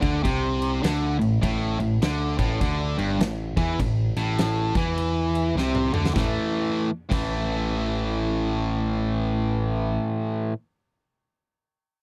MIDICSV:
0, 0, Header, 1, 4, 480
1, 0, Start_track
1, 0, Tempo, 591133
1, 1151, Time_signature, 4, 2, 24, 8
1, 9760, End_track
2, 0, Start_track
2, 0, Title_t, "Distorted electric guitar"
2, 0, Program_c, 0, 30
2, 10, Note_on_c, 0, 50, 104
2, 186, Note_off_c, 0, 50, 0
2, 190, Note_on_c, 0, 48, 94
2, 665, Note_off_c, 0, 48, 0
2, 672, Note_on_c, 0, 50, 112
2, 961, Note_off_c, 0, 50, 0
2, 966, Note_on_c, 0, 45, 72
2, 1113, Note_off_c, 0, 45, 0
2, 1153, Note_on_c, 0, 45, 116
2, 1442, Note_off_c, 0, 45, 0
2, 1459, Note_on_c, 0, 45, 79
2, 1600, Note_off_c, 0, 45, 0
2, 1642, Note_on_c, 0, 50, 103
2, 1926, Note_off_c, 0, 50, 0
2, 1933, Note_on_c, 0, 45, 106
2, 2108, Note_off_c, 0, 45, 0
2, 2117, Note_on_c, 0, 50, 110
2, 2404, Note_off_c, 0, 50, 0
2, 2418, Note_on_c, 0, 43, 109
2, 2590, Note_off_c, 0, 43, 0
2, 2610, Note_on_c, 0, 45, 83
2, 2839, Note_off_c, 0, 45, 0
2, 2905, Note_on_c, 0, 52, 108
2, 3074, Note_off_c, 0, 52, 0
2, 3094, Note_on_c, 0, 45, 77
2, 3321, Note_off_c, 0, 45, 0
2, 3386, Note_on_c, 0, 45, 104
2, 3849, Note_off_c, 0, 45, 0
2, 3870, Note_on_c, 0, 52, 97
2, 4516, Note_off_c, 0, 52, 0
2, 4522, Note_on_c, 0, 48, 112
2, 4805, Note_off_c, 0, 48, 0
2, 4821, Note_on_c, 0, 50, 95
2, 4983, Note_off_c, 0, 50, 0
2, 4987, Note_on_c, 0, 45, 89
2, 5006, Note_on_c, 0, 52, 104
2, 5024, Note_on_c, 0, 57, 108
2, 5592, Note_off_c, 0, 45, 0
2, 5592, Note_off_c, 0, 52, 0
2, 5592, Note_off_c, 0, 57, 0
2, 5759, Note_on_c, 0, 45, 84
2, 5779, Note_on_c, 0, 52, 108
2, 5793, Note_on_c, 0, 57, 92
2, 8546, Note_off_c, 0, 45, 0
2, 8546, Note_off_c, 0, 52, 0
2, 8546, Note_off_c, 0, 57, 0
2, 9760, End_track
3, 0, Start_track
3, 0, Title_t, "Picked electric bass"
3, 0, Program_c, 1, 34
3, 21, Note_on_c, 1, 38, 101
3, 185, Note_off_c, 1, 38, 0
3, 204, Note_on_c, 1, 36, 88
3, 645, Note_off_c, 1, 36, 0
3, 680, Note_on_c, 1, 38, 89
3, 954, Note_off_c, 1, 38, 0
3, 976, Note_on_c, 1, 33, 78
3, 1142, Note_off_c, 1, 33, 0
3, 1164, Note_on_c, 1, 33, 102
3, 1436, Note_off_c, 1, 33, 0
3, 1454, Note_on_c, 1, 33, 84
3, 1621, Note_off_c, 1, 33, 0
3, 1639, Note_on_c, 1, 38, 96
3, 1913, Note_off_c, 1, 38, 0
3, 1940, Note_on_c, 1, 33, 107
3, 2104, Note_off_c, 1, 33, 0
3, 2122, Note_on_c, 1, 38, 98
3, 2395, Note_off_c, 1, 38, 0
3, 2424, Note_on_c, 1, 31, 102
3, 2586, Note_off_c, 1, 31, 0
3, 2593, Note_on_c, 1, 33, 82
3, 2870, Note_off_c, 1, 33, 0
3, 2897, Note_on_c, 1, 40, 100
3, 3062, Note_off_c, 1, 40, 0
3, 3083, Note_on_c, 1, 33, 75
3, 3355, Note_off_c, 1, 33, 0
3, 3383, Note_on_c, 1, 33, 107
3, 3823, Note_off_c, 1, 33, 0
3, 3862, Note_on_c, 1, 40, 96
3, 4484, Note_off_c, 1, 40, 0
3, 4507, Note_on_c, 1, 36, 95
3, 4786, Note_off_c, 1, 36, 0
3, 4810, Note_on_c, 1, 38, 87
3, 4978, Note_off_c, 1, 38, 0
3, 5002, Note_on_c, 1, 33, 88
3, 5163, Note_off_c, 1, 33, 0
3, 5775, Note_on_c, 1, 33, 107
3, 8099, Note_off_c, 1, 33, 0
3, 9760, End_track
4, 0, Start_track
4, 0, Title_t, "Drums"
4, 20, Note_on_c, 9, 36, 103
4, 20, Note_on_c, 9, 49, 64
4, 101, Note_off_c, 9, 36, 0
4, 101, Note_off_c, 9, 49, 0
4, 203, Note_on_c, 9, 36, 103
4, 204, Note_on_c, 9, 49, 79
4, 284, Note_off_c, 9, 36, 0
4, 285, Note_off_c, 9, 49, 0
4, 501, Note_on_c, 9, 49, 70
4, 582, Note_off_c, 9, 49, 0
4, 682, Note_on_c, 9, 49, 83
4, 689, Note_on_c, 9, 38, 108
4, 764, Note_off_c, 9, 49, 0
4, 770, Note_off_c, 9, 38, 0
4, 985, Note_on_c, 9, 49, 62
4, 1066, Note_off_c, 9, 49, 0
4, 1162, Note_on_c, 9, 36, 107
4, 1163, Note_on_c, 9, 49, 87
4, 1243, Note_off_c, 9, 36, 0
4, 1244, Note_off_c, 9, 49, 0
4, 1461, Note_on_c, 9, 49, 61
4, 1542, Note_off_c, 9, 49, 0
4, 1640, Note_on_c, 9, 49, 86
4, 1647, Note_on_c, 9, 38, 116
4, 1721, Note_off_c, 9, 49, 0
4, 1728, Note_off_c, 9, 38, 0
4, 1939, Note_on_c, 9, 36, 103
4, 1942, Note_on_c, 9, 49, 65
4, 2020, Note_off_c, 9, 36, 0
4, 2023, Note_off_c, 9, 49, 0
4, 2119, Note_on_c, 9, 49, 76
4, 2121, Note_on_c, 9, 36, 103
4, 2201, Note_off_c, 9, 49, 0
4, 2202, Note_off_c, 9, 36, 0
4, 2424, Note_on_c, 9, 49, 59
4, 2505, Note_off_c, 9, 49, 0
4, 2602, Note_on_c, 9, 49, 72
4, 2608, Note_on_c, 9, 38, 120
4, 2683, Note_off_c, 9, 49, 0
4, 2689, Note_off_c, 9, 38, 0
4, 2899, Note_on_c, 9, 36, 107
4, 2899, Note_on_c, 9, 49, 60
4, 2981, Note_off_c, 9, 36, 0
4, 2981, Note_off_c, 9, 49, 0
4, 3082, Note_on_c, 9, 36, 91
4, 3082, Note_on_c, 9, 49, 79
4, 3163, Note_off_c, 9, 36, 0
4, 3164, Note_off_c, 9, 49, 0
4, 3381, Note_on_c, 9, 49, 62
4, 3462, Note_off_c, 9, 49, 0
4, 3560, Note_on_c, 9, 49, 85
4, 3567, Note_on_c, 9, 38, 121
4, 3641, Note_off_c, 9, 49, 0
4, 3648, Note_off_c, 9, 38, 0
4, 3858, Note_on_c, 9, 49, 58
4, 3860, Note_on_c, 9, 36, 116
4, 3939, Note_off_c, 9, 49, 0
4, 3941, Note_off_c, 9, 36, 0
4, 4040, Note_on_c, 9, 49, 76
4, 4121, Note_off_c, 9, 49, 0
4, 4345, Note_on_c, 9, 49, 68
4, 4426, Note_off_c, 9, 49, 0
4, 4532, Note_on_c, 9, 38, 61
4, 4613, Note_off_c, 9, 38, 0
4, 4668, Note_on_c, 9, 47, 65
4, 4749, Note_off_c, 9, 47, 0
4, 4821, Note_on_c, 9, 45, 93
4, 4902, Note_off_c, 9, 45, 0
4, 4917, Note_on_c, 9, 38, 90
4, 4998, Note_off_c, 9, 38, 0
4, 5001, Note_on_c, 9, 36, 115
4, 5007, Note_on_c, 9, 38, 89
4, 5082, Note_off_c, 9, 36, 0
4, 5088, Note_off_c, 9, 38, 0
4, 5778, Note_on_c, 9, 36, 114
4, 5781, Note_on_c, 9, 57, 89
4, 5859, Note_off_c, 9, 36, 0
4, 5862, Note_off_c, 9, 57, 0
4, 9760, End_track
0, 0, End_of_file